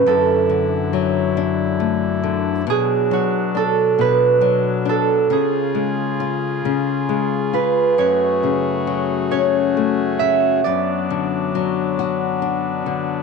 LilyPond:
<<
  \new Staff \with { instrumentName = "Harp" } { \time 6/8 \key b \dorian \tempo 4. = 45 a'4. r4. | gis'8 fis'8 a'8 b'4 a'8 | gis'4. r4 b'8 | cis''4. cis''4 e''8 |
d''2 r4 | }
  \new Staff \with { instrumentName = "Pipe organ" } { \time 6/8 \key b \dorian <fis, d e'>2. | <b, fis d'>2. | <cis eis' gis'>2. | <a fis'>2. |
<fis b d'>2. | }
  \new Staff \with { instrumentName = "Nylon-string guitar" } { \clef bass \time 6/8 \key b \dorian fis,8 d8 fis8 d'8 a8 d8 | b,8 fis8 d'8 b,8 fis8 d'8 | cis8 gis8 eis'8 cis8 gis8 eis'8 | fis,8 cis8 fis8 cis'8 a8 cis8 |
fis,8 d8 fis8 fis'8 d'8 d8 | }
>>